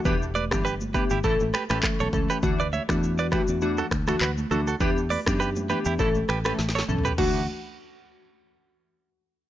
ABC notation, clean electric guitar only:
X:1
M:4/4
L:1/16
Q:"Swing 16ths" 1/4=101
K:D
V:1 name="Clean electric guitar"
[GB] z [Bd] z [GB] z [GB] [EG] [EA] z [GB] [GB] z [Ac] z [GB] | z [Bd] [ce] z2 [Bd] [GB] z2 [FA] z [FA] [FB] z [FA] [FA] | [GB] z [Bd] z [GB] z [GB] [EG] [EA] z [GB] [GB] z [Ac] z [GB] | F2 z12 z2 |]